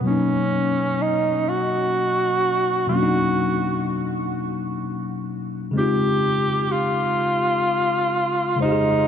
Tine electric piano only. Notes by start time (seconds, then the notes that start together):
0.01 B2 F#3
0.06 A#3 C#4
0.10 D#4
2.87 B2 F#3
2.91 A#3 C#4
2.96 D4
3.03 D#4
5.71 C#3 G#3
5.76 C4 D#4
5.80 F4
8.56 C#3 G#3
8.61 D#4 C5
8.65 G4
8.72 G#4